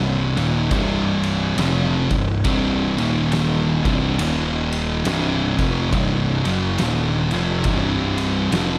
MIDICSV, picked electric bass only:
0, 0, Header, 1, 2, 480
1, 0, Start_track
1, 0, Key_signature, -3, "minor"
1, 0, Tempo, 868307
1, 392, Time_signature, 4, 2, 24, 8
1, 4856, End_track
2, 0, Start_track
2, 0, Title_t, "Picked electric bass"
2, 0, Program_c, 0, 34
2, 0, Note_on_c, 0, 24, 88
2, 183, Note_off_c, 0, 24, 0
2, 204, Note_on_c, 0, 27, 95
2, 379, Note_off_c, 0, 27, 0
2, 391, Note_on_c, 0, 24, 89
2, 850, Note_off_c, 0, 24, 0
2, 868, Note_on_c, 0, 29, 106
2, 1143, Note_off_c, 0, 29, 0
2, 1166, Note_on_c, 0, 24, 82
2, 1340, Note_off_c, 0, 24, 0
2, 1352, Note_on_c, 0, 24, 95
2, 1625, Note_off_c, 0, 24, 0
2, 1650, Note_on_c, 0, 27, 88
2, 2107, Note_off_c, 0, 27, 0
2, 2128, Note_on_c, 0, 24, 90
2, 2302, Note_off_c, 0, 24, 0
2, 2314, Note_on_c, 0, 27, 98
2, 2772, Note_off_c, 0, 27, 0
2, 2795, Note_on_c, 0, 24, 97
2, 3067, Note_off_c, 0, 24, 0
2, 3088, Note_on_c, 0, 29, 89
2, 3262, Note_off_c, 0, 29, 0
2, 3277, Note_on_c, 0, 24, 95
2, 3548, Note_off_c, 0, 24, 0
2, 3569, Note_on_c, 0, 30, 84
2, 3742, Note_off_c, 0, 30, 0
2, 3757, Note_on_c, 0, 27, 93
2, 4028, Note_off_c, 0, 27, 0
2, 4050, Note_on_c, 0, 29, 95
2, 4222, Note_off_c, 0, 29, 0
2, 4230, Note_on_c, 0, 24, 92
2, 4689, Note_off_c, 0, 24, 0
2, 4706, Note_on_c, 0, 29, 97
2, 4856, Note_off_c, 0, 29, 0
2, 4856, End_track
0, 0, End_of_file